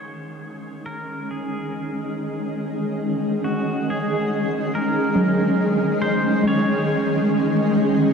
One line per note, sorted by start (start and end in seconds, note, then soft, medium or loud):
0.00 8.13 D#3 medium
0.00 8.13 G#3 medium
0.00 0.48 C#4 medium
0.00 8.13 C#4 medium
0.00 0.48 A#4 medium
0.00 0.85 C#5 medium
0.38 6.81 D#5 medium
0.50 8.13 G#4 medium
0.86 1.31 A#4 medium
1.31 3.52 G#4 medium
3.44 3.89 F#4 medium
3.90 4.71 G#4 medium
4.75 6.01 A#4 medium
5.15 6.61 F#3 medium
6.02 6.46 C5 medium
6.43 8.13 G#3 medium
6.48 8.13 C#5 medium
6.83 8.13 D#5 medium